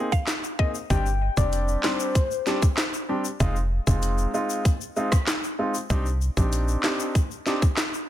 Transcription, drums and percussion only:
0.12 kick loud
0.12 shaker medium
0.27 snare loud
0.27 clap medium
0.27 closed hi-hat medium
0.27 shaker medium
0.44 shaker medium
0.59 kick loud
0.75 shaker medium
0.90 kick loud
0.90 closed hi-hat medium
0.90 shaker medium
1.06 shaker soft
1.37 kick loud
1.37 shaker medium
1.52 closed hi-hat medium
1.52 shaker medium
1.68 shaker medium
1.83 snare loud
1.83 clap loud
1.83 shaker medium
2.00 shaker medium
2.15 kick loud
2.15 closed hi-hat medium
2.15 shaker medium
2.31 shaker soft
2.47 snare medium
2.47 shaker medium
2.62 kick loud
2.62 shaker medium
2.77 snare loud
2.77 clap medium
2.77 closed hi-hat medium
2.77 shaker medium
2.94 shaker medium
3.25 shaker medium
3.40 kick loud
3.40 closed hi-hat medium
3.40 shaker medium
3.56 shaker soft
3.87 kick medium
3.87 shaker medium
4.02 closed hi-hat medium
4.02 shaker medium
4.18 shaker medium
4.34 shaker medium
4.50 shaker medium
4.65 kick loud
4.65 closed hi-hat medium
4.65 shaker medium
4.81 shaker medium
4.96 shaker soft
5.12 kick medium
5.12 cross-stick loud
5.12 shaker medium
5.27 snare loud
5.27 clap medium
5.27 closed hi-hat medium
5.27 shaker medium
5.44 shaker medium
5.74 shaker medium
5.90 kick loud
5.90 closed hi-hat medium
5.90 shaker medium
6.06 shaker soft
6.21 shaker soft
6.37 kick medium
6.37 shaker medium
6.52 closed hi-hat medium
6.52 shaker medium
6.68 shaker medium
6.83 snare loud
6.83 clap medium
6.83 shaker medium
7.00 shaker medium
7.15 kick loud
7.15 closed hi-hat medium
7.15 shaker medium
7.31 shaker soft
7.46 snare medium
7.46 shaker soft
7.62 kick loud
7.62 shaker medium
7.77 snare loud
7.77 clap medium
7.77 closed hi-hat medium
7.77 shaker medium
7.94 shaker medium

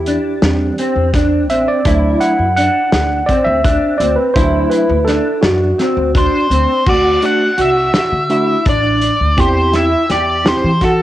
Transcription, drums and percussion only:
0.07 closed hi-hat medium
0.42 snare loud
0.42 closed hi-hat medium
0.78 closed hi-hat medium
1.14 kick loud
1.14 snare soft
1.14 closed hi-hat medium
1.50 closed hi-hat medium
1.85 kick loud
1.85 closed hi-hat loud
2.21 closed hi-hat medium
2.57 closed hi-hat medium
2.92 snare loud
2.92 closed hi-hat medium
3.29 kick medium
3.29 closed hi-hat medium
3.64 kick loud
3.64 closed hi-hat medium
4.00 closed hi-hat medium
4.36 kick loud
4.36 closed hi-hat medium
4.71 closed hi-hat medium
5.08 snare soft
5.08 closed hi-hat medium
5.43 snare loud
5.43 closed hi-hat medium
5.80 snare soft
5.80 closed hi-hat medium
6.15 kick loud
6.15 closed hi-hat medium
6.51 closed hi-hat medium
6.86 kick loud
6.86 crash medium
7.22 closed hi-hat medium
7.58 closed hi-hat medium
7.94 snare medium
7.94 closed hi-hat medium
8.30 closed hi-hat medium
8.65 kick loud
8.65 closed hi-hat medium
9.01 closed hi-hat medium
9.38 kick loud
9.38 closed hi-hat medium
9.73 snare soft
9.73 closed hi-hat medium
10.10 snare soft
10.10 closed hi-hat medium
10.46 snare loud
10.46 closed hi-hat medium
10.81 kick medium
10.81 snare soft
10.81 closed hi-hat medium

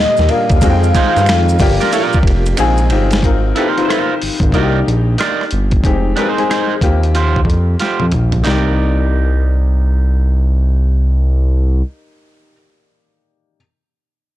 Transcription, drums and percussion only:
0.17 snare soft
0.17 maracas medium
0.29 ride medium
0.50 kick loud
0.50 ride soft
0.50 maracas soft
0.61 kick loud
0.61 ride medium
0.61 maracas medium
0.83 maracas soft
0.95 kick medium
0.95 snare soft
0.95 ride medium
0.95 maracas soft
1.16 snare soft
1.16 ride soft
1.16 maracas medium
1.26 finger snap medium
1.26 maracas medium
1.29 finger snap loud
1.29 snare loud
1.29 ride medium
1.49 maracas medium
1.59 kick loud
1.59 open hi-hat medium
1.59 ride medium
1.59 maracas soft
1.81 snare soft
1.81 ride soft
1.81 maracas soft
1.92 ride medium
1.92 maracas medium
2.13 kick medium
2.13 maracas soft
2.23 kick medium
2.27 ride soft
2.46 ride soft
2.46 maracas medium
2.57 finger snap medium
2.57 ride medium
2.57 maracas medium
2.78 maracas medium
2.90 ride medium
3.11 snare loud
3.11 ride soft
3.11 maracas soft
3.23 kick loud
3.23 closed hi-hat medium
3.56 cross-stick soft
3.56 closed hi-hat medium
3.78 cross-stick soft
3.78 closed hi-hat soft
3.90 cross-stick loud
3.90 closed hi-hat medium
4.22 open hi-hat soft
4.40 kick loud
4.40 closed hi-hat soft
4.52 kick medium
4.52 closed hi-hat medium
4.88 closed hi-hat medium
5.18 cross-stick loud
5.18 closed hi-hat medium
5.41 cross-stick soft
5.51 closed hi-hat medium
5.71 kick medium
5.71 closed hi-hat soft
5.84 kick loud
5.84 closed hi-hat medium
6.17 cross-stick soft
6.17 closed hi-hat medium
6.38 cross-stick soft
6.38 closed hi-hat soft
6.51 cross-stick loud
6.51 closed hi-hat medium
6.81 kick medium
6.81 closed hi-hat medium
7.03 closed hi-hat soft
7.15 closed hi-hat medium
7.36 kick medium
7.45 kick medium
7.50 closed hi-hat soft
7.80 snare soft
7.80 closed hi-hat medium
8.00 high tom soft
8.12 closed hi-hat medium
8.12 mid tom medium
8.32 closed hi-hat soft
8.32 floor tom medium
8.45 snare medium
8.45 clap medium

